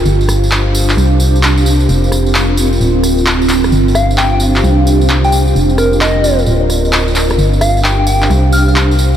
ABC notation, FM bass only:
X:1
M:4/4
L:1/8
Q:"Swing 16ths" 1/4=131
K:Gm
V:1 name="FM bass" clef=bass
G,,,4 C,,4 | F,,,4 D,,,4 | G,,,4 C,,4 | F,,,4 D,,,4 |
G,,,4 C,,4 |]